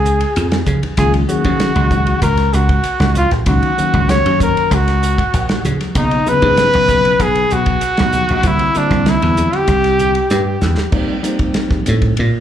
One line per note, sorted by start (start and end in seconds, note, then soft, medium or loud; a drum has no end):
0.00 0.24 C#2 medium
0.00 0.63 G#4 medium
0.05 hi-hat pedal medium
0.05 low conga medium
0.21 ride medium
0.36 0.61 F2 medium
0.36 hi-hat pedal medium
0.36 ride medium
0.52 snare loud
0.52 ride medium
0.66 0.80 C#3 medium
0.66 kick medium
0.66 hi-hat pedal medium
0.66 high conga medium
0.66 low conga medium
0.83 ride medium
0.83 high conga medium
0.97 1.23 C#2 medium
0.97 1.22 D#3 medium
0.97 1.22 F#3 medium
0.97 1.22 A#3 medium
0.97 1.22 C#4 medium
0.97 1.22 F4 medium
0.97 1.13 G#4 medium
0.97 kick loud
0.97 hi-hat pedal medium
0.97 ride medium
1.14 ride medium
1.29 2.21 D#3 medium
1.29 2.21 F#3 medium
1.29 2.21 A#3 medium
1.29 2.22 C#4 medium
1.29 2.19 F#4 medium
1.29 2.22 G#4 medium
1.29 hi-hat pedal medium
1.29 low conga medium
1.44 1.70 C#3 medium
1.44 kick medium
1.44 ride medium
1.44 high conga medium
1.60 snare loud
1.60 hi-hat pedal medium
1.60 ride medium
1.76 2.13 C#2 medium
1.76 ride medium
1.91 kick medium
1.91 hi-hat pedal medium
1.91 high conga medium
1.91 low conga medium
2.07 ride medium
2.22 2.47 C#2 medium
2.22 2.56 A#4 medium
2.22 kick medium
2.22 hi-hat pedal medium
2.22 ride medium
2.37 snare soft
2.37 ride medium
2.53 2.79 C#2 medium
2.53 3.16 F#4 medium
2.53 hi-hat pedal medium
2.69 kick medium
2.69 ride medium
2.84 hi-hat pedal medium
2.84 ride medium
3.00 3.25 C#2 medium
3.00 snare loud
3.00 ride medium
3.15 3.31 F4 medium
3.15 hi-hat pedal medium
3.15 high conga medium
3.15 low conga medium
3.31 3.44 A#1 medium
3.31 snare soft
3.31 ride soft
3.31 high conga medium
3.46 3.60 C#2 medium
3.46 3.70 D#3 medium
3.46 3.71 F#3 medium
3.46 3.71 A#3 medium
3.46 3.71 C#4 medium
3.46 3.71 D#4 medium
3.46 4.12 F#4 loud
3.46 kick loud
3.46 hi-hat pedal medium
3.46 ride medium
3.63 ride soft
3.78 4.70 D#3 medium
3.78 4.70 F#3 medium
3.78 4.70 A#3 medium
3.78 4.70 C#4 medium
3.78 4.71 F#4 medium
3.78 muted slap bass stroke soft
3.78 hi-hat pedal medium
3.94 4.19 C#2 medium
3.94 kick medium
3.94 ride medium
3.94 high conga medium
4.09 4.41 C#5 loud
4.09 snare medium
4.09 hi-hat pedal medium
4.09 ride medium
4.26 4.51 F#2 medium
4.26 ride medium
4.40 4.76 A#4 medium
4.40 kick medium
4.40 hi-hat pedal medium
4.40 high conga medium
4.40 low conga medium
4.57 ride medium
4.71 5.21 C#2 medium
4.71 5.66 F#4 medium
4.71 kick medium
4.71 hi-hat pedal medium
4.71 ride medium
4.88 snare soft
4.88 ride medium
5.03 hi-hat pedal medium
5.18 kick medium
5.18 ride medium
5.34 5.59 A#1 loud
5.34 hi-hat pedal medium
5.34 ride medium
5.49 snare loud
5.49 ride medium
5.65 5.78 C#3 medium
5.65 hi-hat pedal medium
5.65 high conga medium
5.65 low conga medium
5.81 snare soft
5.81 ride medium
5.81 high conga medium
5.95 6.21 B1 medium
5.95 6.19 C#3 medium
5.95 6.19 F#3 medium
5.95 6.19 A#3 medium
5.95 6.19 B3 medium
5.95 6.19 D#4 medium
5.95 6.30 D#4 medium
5.95 kick loud
5.95 hi-hat pedal medium
5.95 ride medium
6.11 ride medium
6.26 7.19 C#3 medium
6.26 7.19 F#3 medium
6.26 7.19 B3 medium
6.26 7.19 C#4 medium
6.26 7.23 B4 loud
6.26 hi-hat pedal medium
6.26 low conga medium
6.42 6.67 G#2 medium
6.42 kick medium
6.42 ride medium
6.42 high conga medium
6.57 snare loud
6.57 hi-hat pedal medium
6.57 ride medium
6.74 7.11 B1 medium
6.74 ride medium
6.88 kick medium
6.88 hi-hat pedal medium
6.88 high conga medium
6.88 low conga medium
7.05 ride medium
7.20 7.45 B1 medium
7.20 7.54 G#4 loud
7.20 kick medium
7.20 hi-hat pedal medium
7.20 ride medium
7.35 ride medium
7.50 7.77 B1 medium
7.50 8.49 F#4 medium
7.50 hi-hat pedal medium
7.66 kick medium
7.66 ride medium
7.81 hi-hat pedal medium
7.81 ride medium
7.97 8.24 B1 medium
7.97 snare medium
7.97 ride medium
8.12 hi-hat pedal medium
8.12 high conga medium
8.12 low conga medium
8.29 8.42 A#1 medium
8.29 ride medium
8.29 high conga medium
8.43 8.57 C2 medium
8.43 8.67 D3 medium
8.43 8.68 G3 medium
8.43 8.68 A#3 medium
8.43 8.68 C4 medium
8.43 8.68 E4 medium
8.43 kick loud
8.43 hi-hat pedal medium
8.43 ride medium
8.47 8.79 E4 medium
8.59 ride medium
8.74 9.68 D3 medium
8.74 9.68 G3 medium
8.74 9.68 A#3 medium
8.74 9.68 C4 medium
8.74 9.11 D4 medium
8.74 9.68 E4 medium
8.74 muted slap bass stroke soft
8.74 hi-hat pedal medium
8.91 9.16 C2 medium
8.91 kick medium
8.91 snare soft
8.91 ride medium
8.91 high conga medium
9.06 9.58 E4 medium
9.06 snare loud
9.06 hi-hat pedal medium
9.06 ride medium
9.22 9.48 E2 medium
9.22 ride medium
9.22 high conga medium
9.37 hi-hat pedal medium
9.37 high conga medium
9.37 low conga medium
9.53 10.63 G4 medium
9.53 ride medium
9.68 10.18 C2 medium
9.68 kick medium
9.68 hi-hat pedal medium
9.68 ride medium
9.84 snare soft
9.84 ride medium
9.99 hi-hat pedal medium
9.99 low conga medium
10.15 ride medium
10.30 10.56 G2 medium
10.30 snare medium
10.30 hi-hat pedal medium
10.61 10.75 E2 medium
10.61 snare medium
10.61 hi-hat pedal medium
10.61 high conga medium
10.61 low conga medium
10.78 snare medium
10.78 high conga medium
10.92 11.16 F3 medium
10.92 11.16 G3 medium
10.92 11.16 A#3 medium
10.92 11.16 C4 medium
10.92 11.16 D#4 medium
10.92 kick loud
10.92 crash medium
11.23 12.16 F3 medium
11.23 12.16 G3 medium
11.23 12.16 A#3 medium
11.23 12.16 C4 medium
11.23 12.16 D#4 medium
11.23 hi-hat pedal medium
11.23 ride medium
11.39 kick medium
11.39 ride medium
11.54 snare loud
11.54 ride medium
11.71 kick medium
11.71 snare soft
11.71 high conga medium
11.86 12.17 A2 medium
11.86 hi-hat pedal medium
11.86 ride medium
11.86 low conga medium
12.02 kick medium
12.02 ride medium
12.02 low conga medium
12.17 12.40 A#2 medium
12.17 ride medium